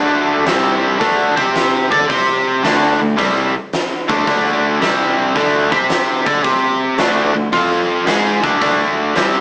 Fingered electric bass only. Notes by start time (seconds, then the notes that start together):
Already playing: D2
0.47 C2
1.01 D2
1.37 C3
1.92 D3
2.10 C3
2.63 D2
3.00 D2
3.19 C2
4.09 D2
4.27 D2
4.81 C2
5.36 D2
5.72 C3
6.26 D3
6.45 C3
6.99 D2
7.35 D2
7.53 F2
8.08 G#2
8.44 D2
8.61 D2
9.16 C2